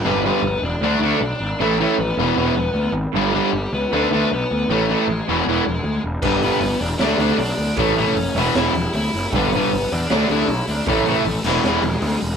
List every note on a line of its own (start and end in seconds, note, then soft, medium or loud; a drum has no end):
0.04 0.29 G1 medium
0.04 0.20 G2 medium
0.04 0.21 D3 medium
0.04 0.21 G3 medium
0.04 0.23 B3 medium
0.04 0.23 B4 loud
0.25 0.40 G2 medium
0.25 0.40 D3 loud
0.25 0.40 G3 loud
0.25 0.61 B3 medium
0.25 0.65 B4 medium
0.42 0.55 G1 medium
0.62 0.75 E1 medium
0.62 0.81 D4 medium
0.62 0.82 D5 loud
0.81 0.94 D2 medium
0.81 0.98 D3 loud
0.81 0.98 A3 loud
0.81 1.18 D4 medium
0.81 0.98 D4 loud
0.81 1.21 D5 loud
0.99 1.12 D2 medium
0.99 1.17 D3 medium
0.99 1.18 A3 medium
1.04 1.18 D4 loud
1.21 1.33 B1 medium
1.21 1.57 D4 medium
1.21 1.57 D5 loud
1.40 1.53 G#1 medium
1.60 1.85 A1 medium
1.60 1.75 A2 loud
1.60 1.76 E3 medium
1.60 1.76 A3 loud
1.60 1.79 E4 medium
1.60 1.81 E5 loud
1.80 1.95 A2 medium
1.80 1.95 E3 medium
1.80 1.95 A3 loud
1.80 1.97 C#4 medium
1.80 1.97 C#5 medium
1.99 2.11 A1 loud
1.99 2.91 B3 medium
1.99 2.91 B4 medium
2.17 2.30 E1 loud
2.17 2.34 E2 medium
2.17 2.34 B2 medium
2.17 2.34 E3 medium
2.36 2.49 E1 medium
2.36 2.52 E2 medium
2.36 2.53 B2 medium
2.36 2.53 E3 loud
2.55 2.68 E1 medium
2.74 2.87 D2 medium
2.92 3.05 G#1 medium
3.13 3.39 G1 medium
3.13 3.30 G2 medium
3.13 3.29 D3 loud
3.13 3.33 G3 medium
3.13 3.33 G4 loud
3.17 3.31 D3 loud
3.17 3.31 G3 loud
3.35 3.49 G2 loud
3.35 3.50 D3 loud
3.35 3.50 G3 loud
3.35 3.71 G3 medium
3.35 3.71 G4 medium
3.53 3.65 G1 medium
3.73 3.85 C#2 medium
3.73 3.91 B3 medium
3.73 3.91 B4 loud
3.93 4.05 D2 medium
3.93 4.07 D3 loud
3.93 4.08 A3 loud
3.93 4.29 B3 medium
3.93 4.08 D4 loud
3.93 4.32 B4 loud
4.11 4.23 D2 medium
4.11 4.27 D3 medium
4.11 4.28 A3 medium
4.11 4.28 D4 medium
4.32 4.43 B1 medium
4.32 4.67 B3 medium
4.32 4.67 B4 medium
4.51 4.63 D2 medium
4.69 4.94 A1 medium
4.69 4.85 A2 medium
4.69 4.85 E3 loud
4.69 4.85 A3 loud
4.69 4.88 C#4 medium
4.69 4.88 C#5 loud
4.89 5.04 A2 loud
4.89 5.04 E3 medium
4.89 5.05 A3 loud
4.89 5.08 A3 medium
4.89 5.08 A4 medium
5.08 5.20 A1 medium
5.08 6.00 G#3 medium
5.08 6.00 G#4 medium
5.29 5.40 E1 medium
5.29 5.43 E2 medium
5.29 5.43 B2 medium
5.29 5.43 E3 loud
5.46 5.59 E1 medium
5.46 5.63 E2 loud
5.46 5.63 B2 loud
5.46 5.63 E3 loud
5.66 5.78 E1 medium
5.84 5.97 D2 medium
6.04 6.16 E1 medium
6.22 6.47 G1 medium
6.22 6.39 G2 medium
6.22 6.40 D3 loud
6.22 6.40 G3 medium
6.22 6.41 B3 medium
6.22 6.41 B4 loud
6.22 kick loud
6.22 crash medium
6.42 6.58 G2 medium
6.42 6.58 D3 loud
6.42 6.59 G3 loud
6.42 6.78 B3 medium
6.42 6.78 B4 medium
6.42 open hi-hat medium
6.60 6.73 G1 medium
6.60 open hi-hat medium
6.81 6.93 E1 medium
6.81 6.87 D4 medium
6.81 6.86 D5 loud
6.81 open hi-hat medium
6.99 7.13 D2 medium
6.99 7.16 D3 medium
6.99 7.17 A3 loud
6.99 7.35 D4 medium
6.99 7.17 D4 loud
6.99 7.37 D5 medium
6.99 snare loud
6.99 open hi-hat medium
7.18 7.31 D2 medium
7.18 7.35 D3 medium
7.18 7.35 A3 loud
7.18 7.36 D4 medium
7.18 open hi-hat medium
7.38 7.51 B1 medium
7.38 7.74 D4 medium
7.38 7.77 D5 medium
7.38 open hi-hat medium
7.58 7.70 D2 medium
7.58 open hi-hat medium
7.77 8.02 A1 medium
7.77 7.94 A2 medium
7.77 7.94 E3 medium
7.77 7.94 A3 loud
7.77 7.96 C#4 medium
7.77 7.95 C#5 loud
7.77 kick loud
7.77 open hi-hat medium
7.96 8.13 A2 loud
7.96 8.13 E3 loud
7.96 8.14 A3 loud
7.96 8.33 C#4 medium
7.96 8.37 C#5 medium
7.96 open hi-hat medium
8.15 8.28 F#1 medium
8.15 open hi-hat medium
8.35 8.47 E1 loud
8.35 8.52 E2 medium
8.35 8.52 B2 medium
8.35 8.55 E4 medium
8.35 8.55 E5 loud
8.35 open hi-hat medium
8.39 8.53 E3 loud
8.54 8.67 E1 medium
8.54 8.71 E2 medium
8.54 8.72 B2 medium
8.54 8.72 E3 loud
8.54 8.91 E4 medium
8.54 8.94 E5 loud
8.54 snare loud
8.54 open hi-hat medium
8.74 8.86 E1 medium
8.74 open hi-hat medium
8.94 9.07 D2 medium
8.94 9.26 E4 medium
8.94 9.29 E5 medium
8.94 open hi-hat medium
9.13 9.26 F#1 medium
9.13 open hi-hat medium
9.30 9.57 G1 loud
9.30 9.34 A4 medium
9.30 kick loud
9.30 open hi-hat medium
9.35 9.49 G2 medium
9.35 9.49 D3 loud
9.35 9.50 G3 loud
9.35 9.52 B3 medium
9.35 9.53 B4 loud
9.52 9.69 G2 medium
9.52 9.89 B3 medium
9.52 9.92 B4 medium
9.52 open hi-hat medium
9.57 9.70 D3 loud
9.57 9.70 G3 loud
9.72 9.85 G1 medium
9.72 open hi-hat medium
9.91 10.04 E2 medium
9.91 10.27 D4 medium
9.91 10.31 D5 medium
9.91 open hi-hat medium
10.10 10.23 D2 medium
10.10 10.26 D3 loud
10.10 10.26 A3 loud
10.10 10.27 D4 loud
10.10 snare loud
10.10 open hi-hat medium
10.29 10.42 D2 medium
10.29 10.45 D3 medium
10.29 10.46 A3 medium
10.29 10.46 D4 medium
10.29 10.66 E4 medium
10.29 10.70 E5 loud
10.29 open hi-hat medium
10.48 10.61 B1 loud
10.48 open hi-hat medium
10.67 10.80 D2 medium
10.67 10.87 D4 medium
10.67 10.87 D5 medium
10.67 open hi-hat medium
10.86 11.12 A1 medium
10.86 11.03 A2 loud
10.86 11.03 E3 loud
10.86 11.04 A3 loud
10.86 11.06 C#4 medium
10.86 11.07 C#5 loud
10.86 kick loud
10.86 open hi-hat medium
11.06 11.23 A2 medium
11.06 11.23 E3 loud
11.06 11.43 A3 medium
11.06 11.23 A3 loud
11.06 11.42 A4 medium
11.06 open hi-hat medium
11.25 11.38 A1 medium
11.25 open hi-hat medium
11.44 11.57 E1 loud
11.44 11.61 E2 medium
11.44 11.61 B2 loud
11.44 11.62 E3 loud
11.44 12.19 G#3 medium
11.44 12.19 G#4 medium
11.44 crash loud
11.64 11.77 E1 medium
11.64 11.80 E2 loud
11.64 11.81 B2 medium
11.64 11.81 E3 loud
11.64 snare loud
11.82 11.95 E1 medium
11.82 open hi-hat medium
12.02 12.15 D2 medium
12.02 open hi-hat medium
12.21 12.35 E1 medium
12.21 open hi-hat medium